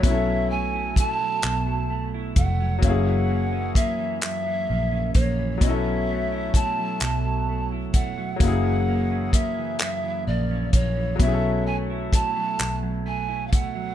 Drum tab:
HH |x-xx-x|x-xx-x|x-xx-x|x-xx-x|
CP |---x--|---x--|---x--|---x--|
BD |o-o--o|o-o--o|o-o--o|o-o--o|

HH |x-xx-x|
CP |---x--|
BD |o-o--o|